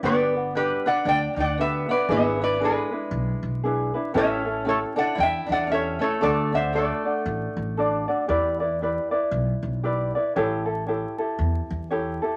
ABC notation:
X:1
M:4/4
L:1/8
Q:"Swing" 1/4=116
K:G
V:1 name="Resonator guitar played with a steel bar"
[Bd]2 [GB] [df] [dg] [df] [Be] [Bd] | [Be] [Bd] [^GB]4- [GB] z | [^ce]2 [Ac] [df] [eg] [df] [ce] [Ac] | [Ad] [ce] [Ad]4- [Ad] z |
z8 | z8 |]
V:2 name="Ukulele"
[DFGB] [DFB] [DFGB] [DFB]3 [DFGB] [DFB] | [DE^GB] [DEB] [DEGB] [DEB]3 [DEGB] [DEB] | [^CEGA] [CEA] [CEGA] [CEA]3 [CEGA] [CEA] | [DFAd] [DFd] [DFAd] [DFd]3 [DFAd] [DFd] |
[EGBd] [EBd] [EGBd] [EBd]3 [EGBd] [EBd] | [EGA^c] [EGA] [EGAc] [EGA]3 [EGAc] [EGA] |]
V:3 name="Steel-string acoustic guitar"
B,2 G, D D D B, B, | B, B, ^G,4- G, z | ^C2 A, D E D C A, | A, C A,4- A, z |
z8 | z8 |]
V:4 name="Upright bass" clef=bass
G,,,4 D,, D,,3 | ^G,,,4 B,,, B,,,3 | A,,,4 E,, E,,3 | D,,4 A,,, A,,,3 |
E,,4 B,,, B,,,3 | A,,,4 E,, E,,3 |]